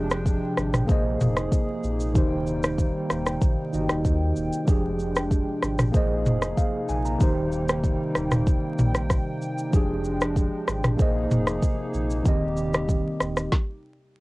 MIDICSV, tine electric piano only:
0, 0, Header, 1, 2, 480
1, 0, Start_track
1, 0, Tempo, 631579
1, 1636, Time_signature, 4, 2, 24, 8
1, 10793, End_track
2, 0, Start_track
2, 0, Title_t, "Tine electric piano"
2, 0, Program_c, 0, 4
2, 0, Control_c, 0, 64, 127
2, 0, Note_on_c, 0, 53, 77
2, 0, Note_on_c, 0, 62, 71
2, 0, Note_on_c, 0, 67, 68
2, 0, Note_on_c, 0, 68, 86
2, 647, Note_off_c, 0, 53, 0
2, 653, Note_off_c, 0, 62, 0
2, 657, Note_on_c, 0, 58, 76
2, 660, Note_off_c, 0, 67, 0
2, 660, Note_off_c, 0, 68, 0
2, 669, Note_on_c, 0, 68, 68
2, 682, Note_on_c, 0, 72, 71
2, 687, Control_c, 0, 64, 0
2, 695, Note_on_c, 0, 75, 83
2, 819, Control_c, 0, 64, 127
2, 1607, Note_off_c, 0, 58, 0
2, 1613, Note_off_c, 0, 68, 0
2, 1617, Note_on_c, 0, 51, 75
2, 1620, Note_off_c, 0, 72, 0
2, 1626, Note_off_c, 0, 75, 0
2, 1630, Note_on_c, 0, 63, 70
2, 1642, Note_on_c, 0, 67, 68
2, 1645, Control_c, 0, 64, 0
2, 1655, Note_on_c, 0, 72, 82
2, 1788, Control_c, 0, 64, 127
2, 2802, Note_off_c, 0, 51, 0
2, 2809, Note_off_c, 0, 63, 0
2, 2815, Note_off_c, 0, 67, 0
2, 2821, Note_off_c, 0, 72, 0
2, 2826, Note_on_c, 0, 51, 57
2, 2832, Note_on_c, 0, 63, 49
2, 2839, Note_on_c, 0, 66, 40
2, 2845, Note_on_c, 0, 75, 60
2, 2888, Note_on_c, 0, 67, 52
2, 2889, Note_off_c, 0, 66, 0
2, 3537, Note_on_c, 0, 53, 77
2, 3550, Note_on_c, 0, 62, 69
2, 3551, Note_off_c, 0, 51, 0
2, 3553, Note_off_c, 0, 67, 0
2, 3554, Note_off_c, 0, 63, 0
2, 3561, Note_off_c, 0, 75, 0
2, 3562, Note_on_c, 0, 67, 67
2, 3567, Control_c, 0, 64, 0
2, 3575, Note_on_c, 0, 68, 83
2, 3681, Control_c, 0, 64, 127
2, 4487, Note_off_c, 0, 53, 0
2, 4493, Note_off_c, 0, 62, 0
2, 4496, Note_on_c, 0, 58, 77
2, 4500, Note_off_c, 0, 67, 0
2, 4500, Note_off_c, 0, 68, 0
2, 4509, Note_on_c, 0, 68, 67
2, 4521, Note_on_c, 0, 72, 71
2, 4527, Control_c, 0, 64, 0
2, 4534, Note_on_c, 0, 75, 84
2, 4678, Control_c, 0, 64, 127
2, 4996, Note_on_c, 0, 77, 67
2, 5224, Note_off_c, 0, 77, 0
2, 5236, Note_on_c, 0, 80, 73
2, 5354, Note_off_c, 0, 80, 0
2, 5361, Note_on_c, 0, 82, 64
2, 5447, Note_off_c, 0, 58, 0
2, 5453, Note_off_c, 0, 68, 0
2, 5458, Note_on_c, 0, 51, 76
2, 5459, Note_off_c, 0, 72, 0
2, 5466, Note_off_c, 0, 75, 0
2, 5470, Note_on_c, 0, 63, 68
2, 5483, Note_on_c, 0, 67, 69
2, 5485, Control_c, 0, 64, 0
2, 5496, Note_on_c, 0, 72, 84
2, 5589, Note_off_c, 0, 82, 0
2, 5639, Control_c, 0, 64, 127
2, 7356, Note_off_c, 0, 51, 0
2, 7363, Note_off_c, 0, 63, 0
2, 7369, Note_off_c, 0, 67, 0
2, 7375, Note_off_c, 0, 72, 0
2, 7377, Note_on_c, 0, 53, 76
2, 7390, Note_on_c, 0, 62, 68
2, 7402, Note_on_c, 0, 67, 67
2, 7406, Control_c, 0, 64, 0
2, 7415, Note_on_c, 0, 68, 84
2, 7560, Control_c, 0, 64, 127
2, 8327, Note_off_c, 0, 53, 0
2, 8334, Note_off_c, 0, 62, 0
2, 8337, Note_on_c, 0, 58, 77
2, 8340, Note_off_c, 0, 67, 0
2, 8340, Note_off_c, 0, 68, 0
2, 8349, Note_on_c, 0, 68, 72
2, 8362, Note_on_c, 0, 72, 68
2, 8365, Control_c, 0, 64, 0
2, 8375, Note_on_c, 0, 75, 84
2, 8488, Control_c, 0, 64, 127
2, 9287, Note_off_c, 0, 58, 0
2, 9293, Note_off_c, 0, 68, 0
2, 9297, Note_on_c, 0, 51, 76
2, 9300, Note_off_c, 0, 72, 0
2, 9306, Note_off_c, 0, 75, 0
2, 9310, Note_on_c, 0, 60, 69
2, 9322, Note_on_c, 0, 67, 69
2, 9327, Control_c, 0, 64, 0
2, 9335, Note_on_c, 0, 75, 83
2, 9443, Control_c, 0, 64, 127
2, 10247, Note_off_c, 0, 51, 0
2, 10254, Note_off_c, 0, 60, 0
2, 10260, Note_off_c, 0, 67, 0
2, 10266, Note_off_c, 0, 75, 0
2, 10286, Control_c, 0, 64, 0
2, 10793, End_track
0, 0, End_of_file